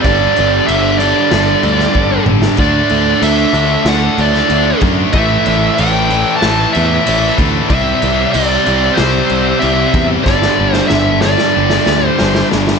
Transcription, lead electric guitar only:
0.03 0.67 D5 loud
0.67 0.98 E5 loud
0.99 2.23 D5 medium
2.60 3.23 D5 medium
3.24 3.89 E5 loud
3.89 4.21 F#5 loud
4.21 4.80 D5 medium
5.13 5.74 E5 medium
5.74 6.36 G5 loud
6.37 6.73 A5 loud
6.73 7.34 E5 medium
7.70 8.30 E5 loud
8.32 8.99 D5 loud
8.94 9.62 C5 loud
9.59 10.06 E5 medium
10.24 10.75 D5 medium
10.75 10.87 C5 medium
10.88 11.19 E5 loud
11.22 12.07 D5 medium
12.07 12.47 C5 medium

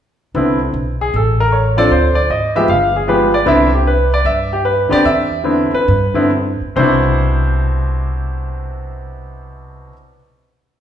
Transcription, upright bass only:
0.34 0.71 C2 medium
0.74 1.10 B1 medium
1.14 1.87 A1 medium
1.91 2.27 D2 medium
2.30 2.66 G#1 medium
2.68 3.42 G1 medium
3.46 4.20 C2 medium
4.25 4.87 G2 medium
4.92 muted upright bass stroke soft
5.05 5.70 E2 medium
5.73 muted upright bass stroke soft
5.88 6.57 G2 medium
6.61 muted upright bass stroke soft
6.77 9.88 C2 medium

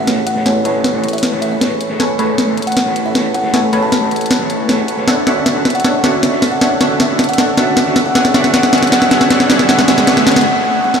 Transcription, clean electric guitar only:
0.06 0.18 A3 medium
0.06 0.18 G#4 medium
0.06 0.18 B4 medium
0.06 0.19 C#5 loud
0.35 0.46 A3 medium
0.35 0.47 G#4 medium
0.35 0.47 B4 medium
0.35 0.47 C#5 medium
0.64 0.91 A3 medium
0.64 0.92 G#4 medium
0.64 0.92 B4 medium
0.64 0.92 C#5 medium
0.93 1.04 A3 medium
0.93 1.04 G#4 medium
0.93 1.05 B4 medium
0.93 1.05 C#5 medium
1.32 1.59 A3 medium
1.32 1.59 G#4 medium
1.32 1.59 B4 medium
1.32 1.60 C#5 medium
1.60 1.71 A3 medium
1.60 1.72 G#4 medium
1.60 1.72 B4 medium
1.60 1.72 C#5 loud
1.89 2.00 A3 medium
1.89 2.01 G#4 medium
1.89 2.01 B4 medium
1.89 2.01 C#5 medium
2.18 2.45 A3 medium
2.18 2.46 G#4 medium
2.18 2.46 B4 medium
2.18 2.46 C#5 medium
2.47 2.58 A3 medium
2.47 2.58 G#4 medium
2.47 2.59 B4 medium
2.47 2.59 C#5 medium
2.85 3.12 A3 medium
2.85 3.13 G#4 medium
2.85 3.13 B4 medium
2.85 3.13 C#5 medium
3.14 3.25 A3 medium
3.14 3.26 G#4 medium
3.14 3.26 B4 medium
3.14 3.26 C#5 loud
3.43 3.54 A3 medium
3.43 3.54 G#4 medium
3.43 3.55 B4 medium
3.43 3.55 C#5 medium
3.72 3.99 A3 medium
3.72 3.99 G#4 medium
3.72 4.00 B4 medium
3.72 4.00 C#5 medium
4.01 4.12 A3 medium
4.01 4.12 G#4 medium
4.01 4.12 B4 medium
4.01 4.13 C#5 medium
4.39 4.66 A3 medium
4.39 4.67 G#4 medium
4.39 4.67 B4 medium
4.39 4.67 C#5 medium
4.68 4.79 A3 medium
4.68 4.79 G#4 medium
4.68 4.80 B4 medium
4.68 4.80 C#5 loud
4.97 5.06 A3 medium
4.97 5.06 G#4 medium
4.97 5.07 B4 medium
4.97 5.07 C#5 medium
5.26 5.53 D3 medium
5.26 5.53 C#4 medium
5.26 5.53 F#4 medium
5.26 5.54 E5 medium
5.55 5.66 D3 medium
5.55 5.66 C#4 medium
5.55 5.66 F#4 medium
5.55 5.67 E5 medium
6.03 6.30 D3 medium
6.03 6.30 C#4 medium
6.03 6.30 F#4 medium
6.03 6.31 E5 medium
6.32 6.43 D3 medium
6.32 6.43 C#4 medium
6.32 6.43 F#4 medium
6.32 6.44 E5 medium
6.79 7.07 D3 medium
6.79 7.07 C#4 medium
6.79 7.07 F#4 medium
6.79 7.08 E5 medium
7.09 7.19 D3 medium
7.09 7.20 C#4 medium
7.09 7.20 F#4 medium
7.09 7.20 E5 medium
7.57 7.84 D3 medium
7.57 7.84 C#4 medium
7.57 7.84 F#4 medium
7.57 7.85 E5 medium
7.85 7.96 D3 medium
7.85 7.97 C#4 medium
7.85 7.97 F#4 medium
7.85 7.97 E5 medium
8.33 8.52 D3 medium
8.33 8.52 C#4 medium
8.33 8.52 F#4 medium
8.33 8.53 E5 medium
8.72 8.90 D3 medium
8.72 8.90 C#4 medium
8.72 8.91 F#4 medium
8.72 8.91 E5 medium
9.10 9.29 D3 medium
9.10 9.29 C#4 medium
9.10 9.29 F#4 medium
9.10 9.30 E5 medium
9.49 9.67 D3 medium
9.49 9.67 C#4 medium
9.49 9.68 F#4 medium
9.49 9.68 E5 medium
9.68 9.86 D3 medium
9.68 9.87 C#4 medium
9.68 9.87 F#4 medium
9.68 9.87 E5 medium
9.87 10.06 D3 medium
9.87 10.06 C#4 medium
9.87 10.06 F#4 medium
9.87 10.07 E5 medium
10.07 10.25 D3 medium
10.07 10.25 C#4 medium
10.07 10.25 F#4 medium
10.07 10.26 E5 medium
10.26 10.44 D3 medium
10.26 10.44 C#4 medium
10.26 10.45 F#4 medium
10.26 10.45 E5 medium

